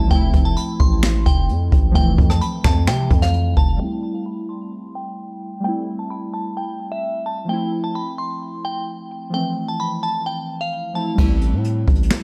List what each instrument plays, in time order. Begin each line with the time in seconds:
Already playing: synth keys G3 A3 C4 E4
0.07 808-style bass F1, synth keys F3 A3, synth bell G5, kick, closed hi-hat
0.12 synth keys C4 E4
0.34 808-style bass F1, kick, closed hi-hat
0.45 synth bell A5
0.57 synth bell B5, closed hi-hat
0.80 808-style bass A1, synth bell C6, kick
1.03 finger snap, snare, closed hi-hat
1.26 808-style bass F1, synth bell G5, kick, closed hi-hat
1.49 808-style bass F2, closed hi-hat
1.72 808-style bass A1, kick, closed hi-hat
1.91 808-style bass F1, synth keys F3 A3, kick, closed hi-hat
1.95 synth keys E3 C4, synth bell G5
2.18 808-style bass F2, kick, closed hi-hat
2.30 synth bell A5, cross-stick, closed hi-hat
2.41 synth bell B5, closed hi-hat
2.64 808-style bass F2, synth bell A5, finger snap, kick, snare
2.88 808-style bass C3, synth bell G5, finger snap, snare, closed hi-hat
3.11 808-style bass F2, kick, closed hi-hat
3.22 synth bell F5, snare
3.34 closed hi-hat
3.57 808-style bass F1, synth bell A5, kick
3.76 synth keys G3 A3, synth bell G5
3.81 synth keys C4 E4
4.14 synth bell A5
4.26 synth bell B5
4.49 synth bell C6
4.95 synth bell G5
5.60 synth keys G3 A3
5.64 synth keys C4 E4, synth bell G5
5.99 synth bell A5
6.10 synth bell B5
6.34 synth bell A5
6.57 synth bell G5
6.92 synth bell E5
7.26 synth bell A5
7.45 synth keys F3 A3
7.49 synth keys C4 E4, synth bell G5
7.84 synth bell A5
7.95 synth bell B5
8.18 synth bell C6
8.65 synth bell G5
9.30 synth keys F3 A3
9.34 synth keys E3 C4, synth bell G5
9.68 synth bell A5
9.80 synth bell B5
10.03 synth bell A5
10.26 synth bell G5
10.61 synth bell F5
10.93 synth keys F3 A3 C4 E4, synth bell A5
11.15 808-style bass A1, synth keys G3 A3, kick, crash
11.20 synth keys C4 E4
11.41 closed hi-hat
11.53 808-style bass A2
11.65 closed hi-hat
11.88 808-style bass A1, kick, closed hi-hat
11.95 closed hi-hat
12.03 closed hi-hat
12.11 finger snap, snare, closed hi-hat